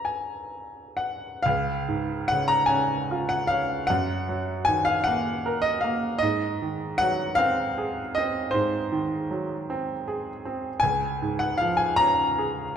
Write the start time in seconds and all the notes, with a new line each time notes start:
Already playing: C#2 C#3 C#4 F4 A#5
0.05 G#5
0.97 F#5
1.43 C#2 F5
1.88 G#2
2.28 C#3 F#5
2.48 A#5
2.66 C#4 G#5
3.11 F4
3.29 F#5
3.47 C#4 F5
3.87 F#2 F#5
4.29 F#3
4.65 D#3 G#5
4.85 F5
5.04 A#3 F#5
5.46 A#4
5.62 D#5
5.81 A#3 F5
6.18 D#5
6.23 G#2
6.62 D#3
6.98 F#3 F#5
7.35 C4 F5
7.78 G#4
8.15 C4 D#5
8.51 G#2 C5
8.92 D#3
9.30 F#3
9.70 C4
10.08 G#4
10.45 C4
10.80 C#2 G#5
11.22 G#2
11.39 F#5
11.58 F3 F5
11.77 G#5
11.96 C#4 A#5
12.39 G#4